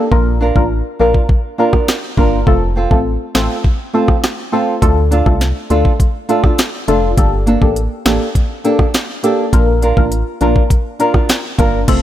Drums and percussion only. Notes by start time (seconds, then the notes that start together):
0.12 kick
0.56 kick
1.14 kick
1.29 kick
1.73 kick, cross-stick
1.88 cross-stick, snare
2.17 kick
2.47 kick
2.91 kick
3.35 cross-stick, snare
3.64 kick
4.08 kick, cross-stick
4.24 cross-stick, snare
4.82 kick, closed hi-hat
5.12 closed hi-hat
5.26 kick
5.41 snare, closed hi-hat
5.70 closed hi-hat
5.85 kick
6.00 kick, closed hi-hat
6.29 closed hi-hat
6.44 kick, cross-stick
6.58 cross-stick, snare, closed hi-hat
6.88 closed hi-hat
7.17 kick, closed hi-hat
7.47 closed hi-hat
7.62 kick
7.76 closed hi-hat
8.06 cross-stick, snare, closed hi-hat
8.35 kick, closed hi-hat
8.65 closed hi-hat
8.79 kick, cross-stick
8.94 cross-stick, snare, closed hi-hat
9.24 closed hi-hat
9.53 kick, closed hi-hat
9.82 closed hi-hat
9.97 kick
10.12 closed hi-hat
10.41 closed hi-hat
10.56 kick
10.70 kick, closed hi-hat
11.00 closed hi-hat
11.14 kick, cross-stick
11.29 cross-stick, snare, closed hi-hat
11.59 kick, closed hi-hat
11.88 kick, closed hi-hat, crash, high bongo